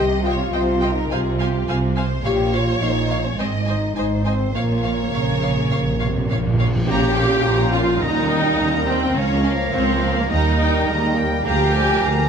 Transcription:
Already playing: C2 C3 G4 D#5
0.24 F4 C5 C#5 D#5 G5
0.53 C2 C3 C5 D#5 G5
0.81 A#4 C5 D#5 G5
0.92 D#4
1.10 C2 C3 F4 G#4 C5 F5 G#5
1.39 G4 C5 F5 G#5
1.67 C2 C3 G#4 C5 F5 G#5
1.96 C5 F5 G#5
2.24 A#1 A#2 G4 C#5 F5
2.53 F4 C#5 F5
2.81 A#1 A#2 D#4 C#5 F5
3.10 C#5 F5
3.26 C#4
3.38 G#1 G#2 C4 C5 D#5 G#5
3.65 D#4 C5 D#5 G#5
3.96 G#1 G#2 D#4 C5 D#5 G#5
4.25 C4 C5 D#5 G#5
4.54 A#1 A#2 A#3 C#5 F5
4.62 A#2
4.70 A#2
4.83 A#2 C#5 F5
4.93 A#2
5.01 A#2
5.09 A#2
5.13 A#1 A#2 C#3 C#5 F5
5.24 A#2
5.32 A#2
5.38 A#2 F5
5.44 A#2 C#5
5.55 A#2
5.63 A#2
5.71 A#1 A#2 C#5 F5
5.78 A#2
5.87 A#2
5.94 A#2
6.00 A#2 C3 C#5 F5
6.09 A#2
6.16 A#2
6.24 A#2
6.29 A#1 A#2 C#5 F5
6.39 A#2
6.47 A#2
6.54 A#2
6.60 A#2 C#5 F5
6.68 A#2
6.76 A#2
6.86 A#1 A#2 F3 C#4 F4 G4 C#5 F5 G5 A#5, tam-tam
7.16 A#4 F5
7.44 A#1 A#2 F4 C5 C#5 A#5
7.73 F4 A#4 F5
8.01 D#2 G3 A#3 D#4 G4 A#4 D#5 G5 A#5
8.30 A#4 G5
8.57 D#2 D#3 G4 D#5 A#5
8.87 C4 A#4 C5 G5
9.14 C#2 F3 C#4 A#4 C#5 F5
9.43 C#4 A#4 C#5 F5
9.71 C#2 C4 C5 C#5 F5
9.99 A#4 C#5 F5
10.17 A#3 A#4
10.28 D#2 G3 D#4 G4 A#4 D#5 A#5
10.32 G5
10.57 A#3 A#4 G5
10.61 G5
10.87 D#2 G#3 G4 D#5 A#5
11.16 G3 A#4 G5
11.44 D2 F3 A#3 G4 G#4 A#4 F5 G5 G#5 A#5
11.73 C4 A#4 D5 G#5
12.00 D2 A#3 G#4 F5 A#5

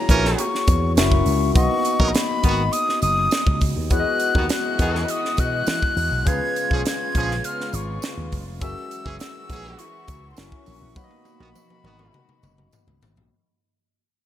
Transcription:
Already playing: A#3 E4 F#4 G#4 C#5 A#5
0.09 A#1 E3 C#4 A#4, kick, closed hi-hat, tambourine
0.25 snare
0.38 C#6, closed hi-hat, tambourine
0.55 snare
0.67 E2, kick, closed hi-hat, tambourine
0.96 F#1 C#4 E4 F#4 A#4 E5 C#6, snare, closed hi-hat, tambourine
1.12 kick
1.26 C#2, open hi-hat, tambourine
1.55 B1 A#3 B3 D#4 F#4 D#5 C#6, kick, closed hi-hat, tambourine
1.85 closed hi-hat, tambourine
1.99 A#1 F#3 D#4 A#4, kick
2.08 A#5
2.13 B5, snare, closed hi-hat, tambourine
2.43 G#1 D#3 B3 F#4, kick, closed hi-hat, tambourine
2.72 D#6, closed hi-hat, tambourine
2.89 snare
3.02 F#1 D#6, closed hi-hat, tambourine
3.31 snare, closed hi-hat, tambourine
3.46 C#2, kick
3.61 C#2, kick, open hi-hat, tambourine
3.76 D#2
3.90 E2 E3 G#3 B3 E4 F#4 G#4 C#5 D#5 F#6, kick, closed hi-hat, tambourine
3.99 D#5
4.20 closed hi-hat, tambourine
4.35 D#2 D#3 B3 F#4, kick
4.49 F#6, snare, closed hi-hat, tambourine
4.78 E2 D#3 B3 G#4, kick, closed hi-hat, tambourine
4.95 snare
5.08 D#6, closed hi-hat
5.25 snare
5.37 B2 F#6, kick, closed hi-hat, tambourine
5.67 E3, snare, closed hi-hat, tambourine
5.83 kick
5.96 E2, open hi-hat, tambourine
6.11 B1
6.25 C#2 C#3 B3 C#4 F4 G#4 B4 F5 G#6, kick, closed hi-hat, tambourine
6.56 closed hi-hat, tambourine
6.71 B1 F3 C#4 G#4, kick
6.86 G#6, snare, closed hi-hat, tambourine
7.15 A#1 F3 C#4 G#4, kick, closed hi-hat, tambourine
7.31 snare
7.44 F6, closed hi-hat, tambourine
7.61 snare
7.73 G#1 C#6, closed hi-hat, tambourine
8.02 snare, closed hi-hat, tambourine
8.17 D#2
8.32 F#1, kick, open hi-hat, tambourine
8.46 F1
8.61 F#1 E3 F#3 C#4 F#4 G#4 A#4 E5 E6, kick, closed hi-hat, tambourine
8.91 closed hi-hat, tambourine
9.05 F#1 E3 C#4 G#4, kick
9.20 E6, snare, closed hi-hat, tambourine
9.49 A#1 E3 C#4 G#4, kick, closed hi-hat, tambourine
9.79 C#6, closed hi-hat, tambourine
10.08 C#2, kick, closed hi-hat, tambourine
10.31 C6
10.37 F#1 C#4 E4 F#4 A#4 E5 C#6, snare, closed hi-hat, tambourine
10.52 kick
10.66 A#1, open hi-hat, tambourine
10.82 A#1
10.96 B1 B2 D#3 A#3 B3 D#4 F#4 C#5 B5, kick, high tom, tambourine
11.04 D#5
11.11 high tom
11.25 high tom, tambourine
11.39 A#1 D#3 B3 F#4, high tom
11.55 mid tom, tambourine
11.70 mid tom
11.83 G#1 D#3 B3 F#4, mid tom
11.99 mid tom
12.14 mid tom
12.29 mid tom
12.43 F#1, mid tom, tambourine
12.58 mid tom
12.72 floor tom, tambourine
12.87 C#2, floor tom
13.02 G#1, floor tom, tambourine
13.16 A#1, floor tom

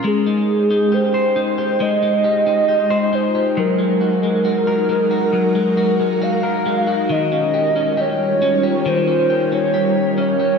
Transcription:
Already playing: C#4 F4 A#4
0.02 G#3 D#4 C5 G5
0.07 G#4
0.26 D#4
0.70 D#4
0.92 G4 C5
1.14 C5
1.36 D#4
1.58 G4
1.79 G#3 F4 D#5
2.03 D#4
2.24 G4
2.47 D#4
2.69 G4
2.90 C5
3.13 D#4 C5
3.35 G4
3.57 F#3 F#4 A#4
3.79 G#3
4.01 F#4
4.23 G#3
4.45 F#4
4.67 A#4
4.89 G#3
5.11 F#4
5.33 F#3
5.55 G#3
5.77 F#4
6.00 G#3
6.22 F#4 F5
6.43 A#4
6.66 G#3
6.87 F#4
7.09 D#3 G3 C#4 F4 A#4 D#5
7.32 C#4
7.54 G4
7.76 C#4
7.97 G4 C#5
8.42 C#4
8.63 G4
8.86 D#3 C5
9.08 C#4
9.30 G4
9.52 C#4 C#5
9.74 G4
10.18 C#4 C#5
10.40 G4

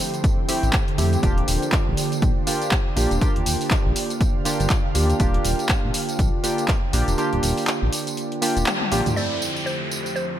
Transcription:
Already playing: D3 F3 A3 C4 E4 G4 A4 C5 G5 E6
0.00 tambourine
0.14 closed hi-hat, tambourine
0.24 kick, closed hi-hat, tambourine
0.48 A3 C4 E4 G4, open hi-hat, tambourine
0.63 A1, closed hi-hat, tambourine
0.73 kick, clap, closed hi-hat, tambourine
0.88 closed hi-hat
0.98 F2 A3 C4 E4 G4, open hi-hat, tambourine
1.13 closed hi-hat, tambourine
1.22 D#1 A#3 D4 F4 G4 D5, kick, closed hi-hat, tambourine
1.38 closed hi-hat
1.48 D#1, open hi-hat, tambourine
1.62 closed hi-hat, tambourine
1.72 kick, clap, closed hi-hat, tambourine
1.87 A#1
1.97 open hi-hat, tambourine
2.12 closed hi-hat, tambourine
2.22 A#1, kick, closed hi-hat, tambourine
2.47 A#3 D4 F4 G4, open hi-hat, tambourine
2.62 closed hi-hat, tambourine
2.71 kick, clap, closed hi-hat, tambourine
2.96 A#1 A#3 D4 F4 G4, open hi-hat, tambourine
3.11 D#1, closed hi-hat, tambourine
3.21 A#3 D4 F4 G4, kick, closed hi-hat, tambourine
3.36 D#1, closed hi-hat
3.46 D#1, open hi-hat, tambourine
3.58 F5, open hi-hat, tambourine
3.71 kick, clap, closed hi-hat, tambourine
3.86 A#1
3.96 open hi-hat, tambourine
4.10 closed hi-hat, tambourine
4.21 kick, closed hi-hat, tambourine
4.45 A#3 D4 F4 G4, open hi-hat, tambourine
4.60 G1, closed hi-hat, tambourine
4.70 kick, clap, closed hi-hat, tambourine
4.95 D#2 A#3 D4 F4 G4, open hi-hat, tambourine
5.10 closed hi-hat, tambourine
5.19 D#1 A#3 D4 F4 G4, kick, closed hi-hat, tambourine
5.34 closed hi-hat
5.45 D#1, open hi-hat, tambourine
5.59 closed hi-hat, tambourine
5.69 kick, clap, closed hi-hat, tambourine
5.84 A#1
5.94 open hi-hat, tambourine
6.09 closed hi-hat, tambourine
6.19 A#1, kick, closed hi-hat, tambourine
6.43 A#3 D4 F4 G4, open hi-hat, tambourine
6.58 closed hi-hat, tambourine
6.68 kick, clap, closed hi-hat, tambourine
6.93 A#1 A#3 D4 F4 G4, open hi-hat, tambourine
7.08 D#1, closed hi-hat, tambourine
7.17 A#3 D4 F4 G4, closed hi-hat, tambourine
7.33 D#1, closed hi-hat
7.43 D#1, open hi-hat, tambourine
7.58 open hi-hat, tambourine
7.67 clap, closed hi-hat, tambourine
7.82 A#1
7.92 open hi-hat, tambourine
8.07 closed hi-hat, tambourine
8.17 closed hi-hat, tambourine
8.32 closed hi-hat
8.42 A#3 D4 F4 G4, open hi-hat, tambourine
8.57 D#1, closed hi-hat, tambourine
8.66 clap, closed hi-hat, high tom, tambourine
8.81 high tom
8.91 A#1 A#3 D4 F4 G4, open hi-hat, tambourine
9.06 D#2, closed hi-hat, mid tom, tambourine
9.16 F2 F3 A3 C4 E4 G4 C5 D5, tambourine, downlifter
9.42 tambourine
9.56 tambourine
9.66 C5, tambourine
9.91 tambourine
10.01 E5
10.06 tambourine
10.16 C5, tambourine
10.30 G4

